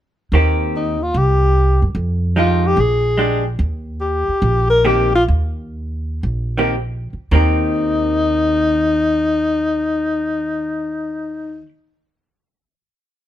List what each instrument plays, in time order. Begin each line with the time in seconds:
0.32 upright bass D#2, hollow-body jazz guitar D#3 A#3 C4 G4
0.76 alto saxophone D#4
1.03 alto saxophone F4
1.14 upright bass C2, alto saxophone G4
1.82 upright bass F#2
1.95 upright bass F2
2.36 hollow-body jazz guitar F3 G#3 D#4 G4, alto saxophone F4
2.67 alto saxophone G4
2.77 upright bass A#1, alto saxophone G#4
3.18 hollow-body jazz guitar G#3 D4 G4
3.59 upright bass D#2
4.01 alto saxophone G4
4.28 muted upright bass stroke
4.42 upright bass A#1
4.70 alto saxophone A#4
4.85 hollow-body jazz guitar D#3 A#3 C4 G4, alto saxophone G4
5.15 alto saxophone F4
5.28 upright bass D#2
6.23 upright bass A#1
6.58 hollow-body jazz guitar D#3 A#3 C4 G4
7.13 muted upright bass stroke
7.31 upright bass D#2, hollow-body jazz guitar D#3 A#3 C4 G4, alto saxophone D#4